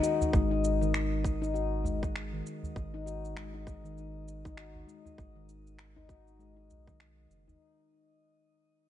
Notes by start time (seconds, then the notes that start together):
0.03 F#4, shaker
0.21 udu, shaker
0.33 G#1 G#3, kick, shaker
0.51 D#4
0.64 shaker
0.81 D#3, shaker
0.94 finger snap, shaker
1.24 kick, shaker
1.42 D#4, shaker
1.54 F#4, shaker
1.84 G#3, udu, shaker
2.03 D#4, kick, shaker
2.16 finger snap, shaker
2.33 D#3
2.46 shaker
2.63 udu, shaker
2.76 G#1, kick, shaker
2.94 D#4
3.06 F#4, shaker
3.25 shaker
3.36 G#3, finger snap, shaker
3.54 D#4
3.67 kick, shaker
3.84 D#3, shaker
3.98 shaker
4.28 shaker
4.45 D#4, kick, shaker
4.57 F#4, finger snap, shaker
4.75 udu
4.88 G#3, shaker
5.05 D#4, udu, shaker
5.18 G#1, kick, shaker
5.36 D#3
5.49 shaker
5.67 shaker
5.79 finger snap, shaker
5.96 D#4, udu
6.09 F#4, kick, shaker
6.28 shaker
6.39 G#3, shaker
6.56 D#4
6.69 B1, udu, shaker
6.87 D#3, kick, shaker
7.00 finger snap, shaker
7.30 F#1, shaker
7.48 D#4, udu, shaker